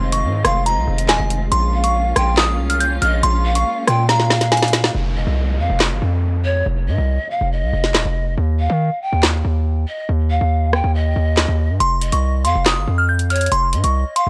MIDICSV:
0, 0, Header, 1, 7, 480
1, 0, Start_track
1, 0, Key_signature, -4, "minor"
1, 0, Tempo, 428571
1, 1700, Time_signature, 4, 2, 24, 8
1, 16010, End_track
2, 0, Start_track
2, 0, Title_t, "Synth bell"
2, 0, Program_c, 0, 98
2, 0, Note_on_c, 0, 84, 109
2, 119, Note_off_c, 0, 84, 0
2, 141, Note_on_c, 0, 85, 74
2, 479, Note_off_c, 0, 85, 0
2, 500, Note_on_c, 0, 84, 84
2, 685, Note_off_c, 0, 84, 0
2, 741, Note_on_c, 0, 82, 88
2, 1192, Note_off_c, 0, 82, 0
2, 1220, Note_on_c, 0, 80, 86
2, 1671, Note_off_c, 0, 80, 0
2, 1699, Note_on_c, 0, 84, 113
2, 2038, Note_off_c, 0, 84, 0
2, 2060, Note_on_c, 0, 85, 77
2, 2398, Note_off_c, 0, 85, 0
2, 2421, Note_on_c, 0, 84, 85
2, 2605, Note_off_c, 0, 84, 0
2, 2660, Note_on_c, 0, 87, 86
2, 2998, Note_off_c, 0, 87, 0
2, 3020, Note_on_c, 0, 89, 77
2, 3113, Note_off_c, 0, 89, 0
2, 3140, Note_on_c, 0, 91, 94
2, 3325, Note_off_c, 0, 91, 0
2, 3380, Note_on_c, 0, 89, 86
2, 3565, Note_off_c, 0, 89, 0
2, 3621, Note_on_c, 0, 84, 120
2, 3959, Note_off_c, 0, 84, 0
2, 3981, Note_on_c, 0, 85, 78
2, 4319, Note_off_c, 0, 85, 0
2, 4341, Note_on_c, 0, 84, 77
2, 4526, Note_off_c, 0, 84, 0
2, 4581, Note_on_c, 0, 82, 95
2, 5031, Note_off_c, 0, 82, 0
2, 5059, Note_on_c, 0, 80, 85
2, 5511, Note_off_c, 0, 80, 0
2, 13219, Note_on_c, 0, 84, 109
2, 13558, Note_off_c, 0, 84, 0
2, 13581, Note_on_c, 0, 85, 76
2, 13919, Note_off_c, 0, 85, 0
2, 13939, Note_on_c, 0, 84, 77
2, 14124, Note_off_c, 0, 84, 0
2, 14179, Note_on_c, 0, 87, 78
2, 14518, Note_off_c, 0, 87, 0
2, 14539, Note_on_c, 0, 89, 77
2, 14632, Note_off_c, 0, 89, 0
2, 14660, Note_on_c, 0, 91, 80
2, 14845, Note_off_c, 0, 91, 0
2, 14900, Note_on_c, 0, 89, 79
2, 15085, Note_off_c, 0, 89, 0
2, 15140, Note_on_c, 0, 84, 107
2, 15479, Note_off_c, 0, 84, 0
2, 15501, Note_on_c, 0, 85, 73
2, 15839, Note_off_c, 0, 85, 0
2, 15859, Note_on_c, 0, 84, 80
2, 16010, Note_off_c, 0, 84, 0
2, 16010, End_track
3, 0, Start_track
3, 0, Title_t, "Pan flute"
3, 0, Program_c, 1, 75
3, 18, Note_on_c, 1, 75, 78
3, 470, Note_off_c, 1, 75, 0
3, 502, Note_on_c, 1, 77, 72
3, 729, Note_off_c, 1, 77, 0
3, 741, Note_on_c, 1, 75, 83
3, 1656, Note_off_c, 1, 75, 0
3, 1938, Note_on_c, 1, 77, 76
3, 2390, Note_off_c, 1, 77, 0
3, 2422, Note_on_c, 1, 79, 78
3, 2649, Note_off_c, 1, 79, 0
3, 3379, Note_on_c, 1, 75, 82
3, 3607, Note_off_c, 1, 75, 0
3, 3860, Note_on_c, 1, 77, 84
3, 4311, Note_off_c, 1, 77, 0
3, 4340, Note_on_c, 1, 79, 82
3, 4568, Note_off_c, 1, 79, 0
3, 4579, Note_on_c, 1, 77, 96
3, 5495, Note_off_c, 1, 77, 0
3, 5781, Note_on_c, 1, 75, 78
3, 6231, Note_off_c, 1, 75, 0
3, 6261, Note_on_c, 1, 77, 80
3, 6488, Note_off_c, 1, 77, 0
3, 7220, Note_on_c, 1, 73, 87
3, 7448, Note_off_c, 1, 73, 0
3, 7699, Note_on_c, 1, 75, 73
3, 8151, Note_off_c, 1, 75, 0
3, 8178, Note_on_c, 1, 77, 69
3, 8407, Note_off_c, 1, 77, 0
3, 8418, Note_on_c, 1, 75, 88
3, 9334, Note_off_c, 1, 75, 0
3, 9621, Note_on_c, 1, 77, 76
3, 10072, Note_off_c, 1, 77, 0
3, 10098, Note_on_c, 1, 79, 76
3, 10327, Note_off_c, 1, 79, 0
3, 11058, Note_on_c, 1, 75, 70
3, 11287, Note_off_c, 1, 75, 0
3, 11537, Note_on_c, 1, 77, 79
3, 11990, Note_off_c, 1, 77, 0
3, 12019, Note_on_c, 1, 79, 79
3, 12248, Note_off_c, 1, 79, 0
3, 12254, Note_on_c, 1, 75, 95
3, 13172, Note_off_c, 1, 75, 0
3, 13457, Note_on_c, 1, 75, 81
3, 13910, Note_off_c, 1, 75, 0
3, 13939, Note_on_c, 1, 77, 89
3, 14168, Note_off_c, 1, 77, 0
3, 14902, Note_on_c, 1, 73, 87
3, 15129, Note_off_c, 1, 73, 0
3, 15377, Note_on_c, 1, 75, 75
3, 15830, Note_off_c, 1, 75, 0
3, 15862, Note_on_c, 1, 77, 69
3, 16010, Note_off_c, 1, 77, 0
3, 16010, End_track
4, 0, Start_track
4, 0, Title_t, "String section"
4, 0, Program_c, 2, 48
4, 0, Note_on_c, 2, 51, 82
4, 0, Note_on_c, 2, 56, 74
4, 0, Note_on_c, 2, 60, 76
4, 0, Note_on_c, 2, 65, 89
4, 1655, Note_off_c, 2, 51, 0
4, 1655, Note_off_c, 2, 65, 0
4, 1662, Note_off_c, 2, 60, 0
4, 1699, Note_on_c, 2, 58, 78
4, 1699, Note_on_c, 2, 61, 85
4, 1699, Note_on_c, 2, 65, 93
4, 5495, Note_off_c, 2, 56, 0
4, 5501, Note_off_c, 2, 58, 0
4, 5501, Note_off_c, 2, 61, 0
4, 5501, Note_off_c, 2, 65, 0
4, 16010, End_track
5, 0, Start_track
5, 0, Title_t, "808-style bass"
5, 0, Program_c, 3, 38
5, 0, Note_on_c, 3, 29, 112
5, 260, Note_on_c, 3, 44, 100
5, 277, Note_off_c, 3, 29, 0
5, 488, Note_off_c, 3, 44, 0
5, 500, Note_on_c, 3, 29, 107
5, 859, Note_on_c, 3, 36, 96
5, 876, Note_off_c, 3, 29, 0
5, 974, Note_off_c, 3, 36, 0
5, 979, Note_on_c, 3, 29, 106
5, 1220, Note_on_c, 3, 27, 104
5, 1236, Note_off_c, 3, 29, 0
5, 1334, Note_off_c, 3, 27, 0
5, 1340, Note_on_c, 3, 29, 100
5, 1685, Note_off_c, 3, 29, 0
5, 1700, Note_on_c, 3, 34, 110
5, 2391, Note_off_c, 3, 34, 0
5, 2420, Note_on_c, 3, 34, 106
5, 2900, Note_on_c, 3, 36, 99
5, 2917, Note_off_c, 3, 34, 0
5, 3356, Note_off_c, 3, 36, 0
5, 3380, Note_on_c, 3, 34, 104
5, 3611, Note_off_c, 3, 34, 0
5, 3619, Note_on_c, 3, 34, 116
5, 4080, Note_off_c, 3, 34, 0
5, 4340, Note_on_c, 3, 46, 104
5, 5495, Note_off_c, 3, 46, 0
5, 5540, Note_on_c, 3, 29, 110
5, 5886, Note_off_c, 3, 29, 0
5, 5900, Note_on_c, 3, 36, 106
5, 6260, Note_on_c, 3, 41, 97
5, 6277, Note_off_c, 3, 36, 0
5, 6374, Note_off_c, 3, 41, 0
5, 6381, Note_on_c, 3, 29, 110
5, 6621, Note_on_c, 3, 31, 92
5, 6637, Note_off_c, 3, 29, 0
5, 6734, Note_off_c, 3, 31, 0
5, 6741, Note_on_c, 3, 41, 103
5, 7432, Note_off_c, 3, 41, 0
5, 7460, Note_on_c, 3, 29, 106
5, 7700, Note_on_c, 3, 44, 107
5, 7717, Note_off_c, 3, 29, 0
5, 7814, Note_off_c, 3, 44, 0
5, 7820, Note_on_c, 3, 36, 103
5, 8051, Note_off_c, 3, 36, 0
5, 8300, Note_on_c, 3, 29, 103
5, 8540, Note_on_c, 3, 36, 97
5, 8557, Note_off_c, 3, 29, 0
5, 8654, Note_off_c, 3, 36, 0
5, 8661, Note_on_c, 3, 29, 102
5, 8900, Note_on_c, 3, 27, 105
5, 8917, Note_off_c, 3, 29, 0
5, 9014, Note_off_c, 3, 27, 0
5, 9021, Note_on_c, 3, 29, 101
5, 9366, Note_off_c, 3, 29, 0
5, 9380, Note_on_c, 3, 39, 108
5, 9726, Note_off_c, 3, 39, 0
5, 9740, Note_on_c, 3, 51, 101
5, 9970, Note_off_c, 3, 51, 0
5, 10220, Note_on_c, 3, 39, 99
5, 10566, Note_off_c, 3, 39, 0
5, 10580, Note_on_c, 3, 39, 103
5, 11041, Note_off_c, 3, 39, 0
5, 11300, Note_on_c, 3, 39, 110
5, 11646, Note_off_c, 3, 39, 0
5, 11660, Note_on_c, 3, 39, 103
5, 12121, Note_off_c, 3, 39, 0
5, 12140, Note_on_c, 3, 39, 104
5, 12486, Note_off_c, 3, 39, 0
5, 12499, Note_on_c, 3, 39, 101
5, 12845, Note_off_c, 3, 39, 0
5, 12860, Note_on_c, 3, 39, 109
5, 13100, Note_on_c, 3, 43, 96
5, 13117, Note_off_c, 3, 39, 0
5, 13214, Note_off_c, 3, 43, 0
5, 13221, Note_on_c, 3, 29, 111
5, 13566, Note_off_c, 3, 29, 0
5, 13581, Note_on_c, 3, 36, 109
5, 13940, Note_on_c, 3, 41, 100
5, 13957, Note_off_c, 3, 36, 0
5, 14054, Note_off_c, 3, 41, 0
5, 14060, Note_on_c, 3, 29, 106
5, 14300, Note_on_c, 3, 31, 97
5, 14317, Note_off_c, 3, 29, 0
5, 14414, Note_off_c, 3, 31, 0
5, 14420, Note_on_c, 3, 41, 104
5, 15111, Note_off_c, 3, 41, 0
5, 15140, Note_on_c, 3, 29, 105
5, 15379, Note_on_c, 3, 44, 105
5, 15396, Note_off_c, 3, 29, 0
5, 15494, Note_off_c, 3, 44, 0
5, 15499, Note_on_c, 3, 36, 106
5, 15730, Note_off_c, 3, 36, 0
5, 16010, End_track
6, 0, Start_track
6, 0, Title_t, "Downlifter"
6, 0, Program_c, 4, 103
6, 5540, Note_on_c, 4, 60, 80
6, 9380, Note_off_c, 4, 60, 0
6, 16010, End_track
7, 0, Start_track
7, 0, Title_t, "Drums"
7, 139, Note_on_c, 9, 42, 84
7, 251, Note_off_c, 9, 42, 0
7, 500, Note_on_c, 9, 37, 92
7, 501, Note_on_c, 9, 42, 90
7, 612, Note_off_c, 9, 37, 0
7, 613, Note_off_c, 9, 42, 0
7, 742, Note_on_c, 9, 42, 74
7, 854, Note_off_c, 9, 42, 0
7, 1102, Note_on_c, 9, 42, 84
7, 1214, Note_off_c, 9, 42, 0
7, 1219, Note_on_c, 9, 38, 111
7, 1221, Note_on_c, 9, 39, 86
7, 1221, Note_on_c, 9, 42, 78
7, 1331, Note_off_c, 9, 38, 0
7, 1333, Note_off_c, 9, 39, 0
7, 1333, Note_off_c, 9, 42, 0
7, 1461, Note_on_c, 9, 42, 88
7, 1573, Note_off_c, 9, 42, 0
7, 1699, Note_on_c, 9, 42, 89
7, 1811, Note_off_c, 9, 42, 0
7, 2058, Note_on_c, 9, 42, 85
7, 2170, Note_off_c, 9, 42, 0
7, 2419, Note_on_c, 9, 37, 90
7, 2421, Note_on_c, 9, 42, 88
7, 2531, Note_off_c, 9, 37, 0
7, 2533, Note_off_c, 9, 42, 0
7, 2660, Note_on_c, 9, 38, 116
7, 2661, Note_on_c, 9, 39, 97
7, 2661, Note_on_c, 9, 42, 73
7, 2772, Note_off_c, 9, 38, 0
7, 2773, Note_off_c, 9, 39, 0
7, 2773, Note_off_c, 9, 42, 0
7, 3022, Note_on_c, 9, 42, 86
7, 3134, Note_off_c, 9, 42, 0
7, 3141, Note_on_c, 9, 42, 87
7, 3253, Note_off_c, 9, 42, 0
7, 3381, Note_on_c, 9, 42, 78
7, 3493, Note_off_c, 9, 42, 0
7, 3620, Note_on_c, 9, 42, 83
7, 3732, Note_off_c, 9, 42, 0
7, 3979, Note_on_c, 9, 42, 84
7, 4091, Note_off_c, 9, 42, 0
7, 4339, Note_on_c, 9, 37, 91
7, 4341, Note_on_c, 9, 42, 85
7, 4451, Note_off_c, 9, 37, 0
7, 4453, Note_off_c, 9, 42, 0
7, 4580, Note_on_c, 9, 38, 63
7, 4581, Note_on_c, 9, 42, 76
7, 4692, Note_off_c, 9, 38, 0
7, 4693, Note_off_c, 9, 42, 0
7, 4700, Note_on_c, 9, 38, 61
7, 4812, Note_off_c, 9, 38, 0
7, 4820, Note_on_c, 9, 38, 81
7, 4932, Note_off_c, 9, 38, 0
7, 4940, Note_on_c, 9, 38, 71
7, 4942, Note_on_c, 9, 42, 87
7, 5052, Note_off_c, 9, 38, 0
7, 5054, Note_off_c, 9, 42, 0
7, 5060, Note_on_c, 9, 38, 94
7, 5060, Note_on_c, 9, 42, 80
7, 5120, Note_off_c, 9, 42, 0
7, 5120, Note_on_c, 9, 42, 68
7, 5172, Note_off_c, 9, 38, 0
7, 5180, Note_off_c, 9, 42, 0
7, 5180, Note_on_c, 9, 38, 86
7, 5180, Note_on_c, 9, 42, 55
7, 5240, Note_off_c, 9, 42, 0
7, 5240, Note_on_c, 9, 42, 43
7, 5292, Note_off_c, 9, 38, 0
7, 5300, Note_on_c, 9, 38, 113
7, 5301, Note_off_c, 9, 42, 0
7, 5301, Note_on_c, 9, 42, 88
7, 5412, Note_off_c, 9, 38, 0
7, 5413, Note_off_c, 9, 42, 0
7, 5420, Note_on_c, 9, 38, 97
7, 5532, Note_off_c, 9, 38, 0
7, 6500, Note_on_c, 9, 38, 112
7, 6501, Note_on_c, 9, 39, 94
7, 6612, Note_off_c, 9, 38, 0
7, 6613, Note_off_c, 9, 39, 0
7, 8779, Note_on_c, 9, 38, 66
7, 8891, Note_off_c, 9, 38, 0
7, 8900, Note_on_c, 9, 38, 107
7, 8901, Note_on_c, 9, 39, 84
7, 9012, Note_off_c, 9, 38, 0
7, 9013, Note_off_c, 9, 39, 0
7, 10340, Note_on_c, 9, 38, 112
7, 10341, Note_on_c, 9, 39, 92
7, 10452, Note_off_c, 9, 38, 0
7, 10453, Note_off_c, 9, 39, 0
7, 12019, Note_on_c, 9, 37, 94
7, 12131, Note_off_c, 9, 37, 0
7, 12739, Note_on_c, 9, 38, 107
7, 12740, Note_on_c, 9, 39, 86
7, 12851, Note_off_c, 9, 38, 0
7, 12852, Note_off_c, 9, 39, 0
7, 13220, Note_on_c, 9, 42, 85
7, 13332, Note_off_c, 9, 42, 0
7, 13457, Note_on_c, 9, 42, 81
7, 13569, Note_off_c, 9, 42, 0
7, 13579, Note_on_c, 9, 42, 81
7, 13691, Note_off_c, 9, 42, 0
7, 13941, Note_on_c, 9, 42, 85
7, 14053, Note_off_c, 9, 42, 0
7, 14179, Note_on_c, 9, 38, 113
7, 14181, Note_on_c, 9, 39, 88
7, 14181, Note_on_c, 9, 42, 74
7, 14291, Note_off_c, 9, 38, 0
7, 14293, Note_off_c, 9, 39, 0
7, 14293, Note_off_c, 9, 42, 0
7, 14775, Note_on_c, 9, 42, 64
7, 14887, Note_off_c, 9, 42, 0
7, 14900, Note_on_c, 9, 42, 68
7, 14960, Note_off_c, 9, 42, 0
7, 14960, Note_on_c, 9, 42, 67
7, 15020, Note_off_c, 9, 42, 0
7, 15020, Note_on_c, 9, 42, 67
7, 15080, Note_off_c, 9, 42, 0
7, 15080, Note_on_c, 9, 42, 65
7, 15139, Note_off_c, 9, 42, 0
7, 15139, Note_on_c, 9, 42, 85
7, 15251, Note_off_c, 9, 42, 0
7, 15377, Note_on_c, 9, 42, 79
7, 15489, Note_off_c, 9, 42, 0
7, 15498, Note_on_c, 9, 42, 82
7, 15610, Note_off_c, 9, 42, 0
7, 15861, Note_on_c, 9, 42, 86
7, 15973, Note_off_c, 9, 42, 0
7, 16010, End_track
0, 0, End_of_file